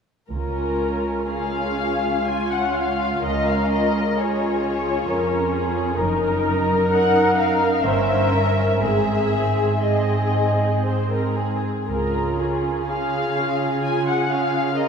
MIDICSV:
0, 0, Header, 1, 6, 480
1, 0, Start_track
1, 0, Key_signature, -5, "major"
1, 0, Tempo, 975610
1, 160, Time_signature, 3, 2, 24, 8
1, 1599, Tempo, 920245
1, 3999, Tempo, 978793
1, 4479, Tempo, 1013514
1, 6399, Tempo, 947867
1, 7412, End_track
2, 0, Start_track
2, 0, Title_t, "Violin section"
2, 0, Program_c, 0, 48
2, 638, Note_on_c, 0, 77, 52
2, 1097, Note_off_c, 0, 77, 0
2, 1109, Note_on_c, 0, 80, 56
2, 1234, Note_off_c, 0, 80, 0
2, 1236, Note_on_c, 0, 78, 49
2, 1353, Note_on_c, 0, 77, 55
2, 1358, Note_off_c, 0, 78, 0
2, 1592, Note_on_c, 0, 75, 57
2, 1594, Note_off_c, 0, 77, 0
2, 1715, Note_on_c, 0, 77, 50
2, 1716, Note_off_c, 0, 75, 0
2, 1841, Note_off_c, 0, 77, 0
2, 1843, Note_on_c, 0, 75, 52
2, 2081, Note_off_c, 0, 75, 0
2, 2087, Note_on_c, 0, 73, 50
2, 3030, Note_off_c, 0, 73, 0
2, 3509, Note_on_c, 0, 78, 60
2, 3736, Note_off_c, 0, 78, 0
2, 3758, Note_on_c, 0, 77, 51
2, 3997, Note_on_c, 0, 76, 64
2, 4000, Note_off_c, 0, 77, 0
2, 4470, Note_off_c, 0, 76, 0
2, 4476, Note_on_c, 0, 76, 58
2, 4946, Note_off_c, 0, 76, 0
2, 4954, Note_on_c, 0, 75, 39
2, 5440, Note_off_c, 0, 75, 0
2, 6400, Note_on_c, 0, 77, 55
2, 6860, Note_off_c, 0, 77, 0
2, 6880, Note_on_c, 0, 80, 53
2, 6998, Note_off_c, 0, 80, 0
2, 7007, Note_on_c, 0, 78, 48
2, 7121, Note_off_c, 0, 78, 0
2, 7123, Note_on_c, 0, 77, 57
2, 7356, Note_on_c, 0, 75, 59
2, 7361, Note_off_c, 0, 77, 0
2, 7412, Note_off_c, 0, 75, 0
2, 7412, End_track
3, 0, Start_track
3, 0, Title_t, "Violin section"
3, 0, Program_c, 1, 48
3, 154, Note_on_c, 1, 70, 41
3, 620, Note_off_c, 1, 70, 0
3, 644, Note_on_c, 1, 68, 32
3, 1120, Note_off_c, 1, 68, 0
3, 1125, Note_on_c, 1, 65, 36
3, 1599, Note_on_c, 1, 70, 45
3, 1601, Note_off_c, 1, 65, 0
3, 2087, Note_off_c, 1, 70, 0
3, 2088, Note_on_c, 1, 68, 37
3, 2556, Note_on_c, 1, 70, 43
3, 2558, Note_off_c, 1, 68, 0
3, 2789, Note_on_c, 1, 68, 46
3, 2791, Note_off_c, 1, 70, 0
3, 3020, Note_on_c, 1, 70, 57
3, 3024, Note_off_c, 1, 68, 0
3, 3994, Note_off_c, 1, 70, 0
3, 3994, Note_on_c, 1, 72, 46
3, 4227, Note_on_c, 1, 70, 39
3, 4232, Note_off_c, 1, 72, 0
3, 4475, Note_on_c, 1, 68, 44
3, 4476, Note_off_c, 1, 70, 0
3, 4907, Note_off_c, 1, 68, 0
3, 4956, Note_on_c, 1, 68, 42
3, 5422, Note_off_c, 1, 68, 0
3, 5439, Note_on_c, 1, 72, 38
3, 5562, Note_off_c, 1, 72, 0
3, 5565, Note_on_c, 1, 70, 36
3, 5683, Note_on_c, 1, 68, 35
3, 5685, Note_off_c, 1, 70, 0
3, 5928, Note_off_c, 1, 68, 0
3, 5929, Note_on_c, 1, 70, 46
3, 6151, Note_off_c, 1, 70, 0
3, 6163, Note_on_c, 1, 68, 35
3, 6393, Note_off_c, 1, 68, 0
3, 6398, Note_on_c, 1, 68, 44
3, 7339, Note_off_c, 1, 68, 0
3, 7354, Note_on_c, 1, 70, 48
3, 7412, Note_off_c, 1, 70, 0
3, 7412, End_track
4, 0, Start_track
4, 0, Title_t, "Viola section"
4, 0, Program_c, 2, 48
4, 157, Note_on_c, 2, 65, 29
4, 160, Note_on_c, 2, 61, 26
4, 622, Note_off_c, 2, 65, 0
4, 623, Note_off_c, 2, 61, 0
4, 639, Note_on_c, 2, 65, 35
4, 641, Note_on_c, 2, 61, 34
4, 1106, Note_off_c, 2, 65, 0
4, 1107, Note_off_c, 2, 61, 0
4, 1111, Note_on_c, 2, 65, 33
4, 1113, Note_on_c, 2, 61, 33
4, 1584, Note_off_c, 2, 65, 0
4, 1585, Note_off_c, 2, 61, 0
4, 1594, Note_on_c, 2, 61, 30
4, 1595, Note_on_c, 2, 65, 32
4, 2074, Note_off_c, 2, 61, 0
4, 2075, Note_off_c, 2, 65, 0
4, 2084, Note_on_c, 2, 61, 41
4, 2084, Note_on_c, 2, 65, 41
4, 3010, Note_off_c, 2, 61, 0
4, 3010, Note_off_c, 2, 65, 0
4, 3030, Note_on_c, 2, 63, 42
4, 3030, Note_on_c, 2, 70, 41
4, 3505, Note_off_c, 2, 63, 0
4, 3507, Note_off_c, 2, 70, 0
4, 3514, Note_on_c, 2, 63, 45
4, 3514, Note_on_c, 2, 70, 51
4, 3989, Note_off_c, 2, 63, 0
4, 3989, Note_off_c, 2, 70, 0
4, 3995, Note_on_c, 2, 61, 42
4, 3995, Note_on_c, 2, 70, 45
4, 4467, Note_off_c, 2, 61, 0
4, 4467, Note_off_c, 2, 70, 0
4, 4475, Note_on_c, 2, 68, 35
4, 4479, Note_on_c, 2, 60, 34
4, 4947, Note_off_c, 2, 60, 0
4, 4955, Note_off_c, 2, 68, 0
4, 4960, Note_on_c, 2, 68, 34
4, 4961, Note_on_c, 2, 60, 41
4, 5812, Note_off_c, 2, 68, 0
4, 5813, Note_off_c, 2, 60, 0
4, 5933, Note_on_c, 2, 68, 32
4, 5936, Note_on_c, 2, 65, 32
4, 6153, Note_off_c, 2, 68, 0
4, 6154, Note_off_c, 2, 65, 0
4, 6168, Note_on_c, 2, 61, 31
4, 6168, Note_on_c, 2, 65, 32
4, 6400, Note_off_c, 2, 61, 0
4, 6400, Note_off_c, 2, 65, 0
4, 6405, Note_on_c, 2, 68, 33
4, 6406, Note_on_c, 2, 65, 36
4, 6642, Note_off_c, 2, 65, 0
4, 6644, Note_off_c, 2, 68, 0
4, 6648, Note_on_c, 2, 61, 30
4, 6648, Note_on_c, 2, 65, 32
4, 6874, Note_off_c, 2, 65, 0
4, 6880, Note_on_c, 2, 65, 34
4, 6882, Note_on_c, 2, 68, 34
4, 6883, Note_off_c, 2, 61, 0
4, 7104, Note_off_c, 2, 65, 0
4, 7104, Note_off_c, 2, 68, 0
4, 7122, Note_on_c, 2, 61, 30
4, 7122, Note_on_c, 2, 65, 33
4, 7352, Note_off_c, 2, 65, 0
4, 7358, Note_on_c, 2, 65, 37
4, 7360, Note_off_c, 2, 61, 0
4, 7360, Note_on_c, 2, 68, 34
4, 7412, Note_off_c, 2, 65, 0
4, 7412, Note_off_c, 2, 68, 0
4, 7412, End_track
5, 0, Start_track
5, 0, Title_t, "Cello section"
5, 0, Program_c, 3, 48
5, 155, Note_on_c, 3, 37, 34
5, 1576, Note_off_c, 3, 37, 0
5, 1595, Note_on_c, 3, 37, 39
5, 2537, Note_off_c, 3, 37, 0
5, 2552, Note_on_c, 3, 41, 48
5, 3018, Note_off_c, 3, 41, 0
5, 3025, Note_on_c, 3, 42, 50
5, 3997, Note_off_c, 3, 42, 0
5, 3999, Note_on_c, 3, 43, 51
5, 4478, Note_on_c, 3, 44, 38
5, 4479, Note_off_c, 3, 43, 0
5, 5809, Note_off_c, 3, 44, 0
5, 5923, Note_on_c, 3, 49, 42
5, 7412, Note_off_c, 3, 49, 0
5, 7412, End_track
6, 0, Start_track
6, 0, Title_t, "Double bass section"
6, 0, Program_c, 4, 48
6, 159, Note_on_c, 4, 37, 31
6, 623, Note_off_c, 4, 37, 0
6, 1601, Note_on_c, 4, 37, 35
6, 2067, Note_off_c, 4, 37, 0
6, 3029, Note_on_c, 4, 30, 43
6, 3494, Note_off_c, 4, 30, 0
6, 3997, Note_on_c, 4, 31, 42
6, 4458, Note_off_c, 4, 31, 0
6, 4476, Note_on_c, 4, 32, 33
6, 4937, Note_off_c, 4, 32, 0
6, 5930, Note_on_c, 4, 37, 37
6, 6381, Note_off_c, 4, 37, 0
6, 7412, End_track
0, 0, End_of_file